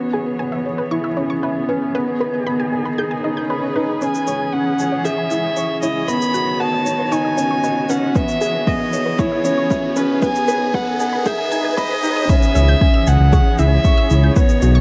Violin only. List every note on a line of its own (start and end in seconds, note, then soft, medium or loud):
4.01 4.55 G#5 medium
4.53 5.07 F#5 medium
5.05 5.82 E5 medium
5.82 6.09 D#5 medium
6.08 6.62 B5 loud
6.60 7.14 A5 loud
7.12 7.91 G#5 loud
7.90 8.17 F#5 medium
8.16 8.69 E5 loud
8.67 9.21 D#5 medium
9.19 9.98 C#5 loud
9.97 10.23 B4 medium
10.23 10.76 G#5 loud
10.75 11.29 F#5 medium
11.27 11.78 E5 loud
11.79 12.31 D#5 loud
12.30 13.09 E5 loud
13.08 13.60 F#5 loud
13.59 14.36 E5 loud
14.36 14.81 C#5 loud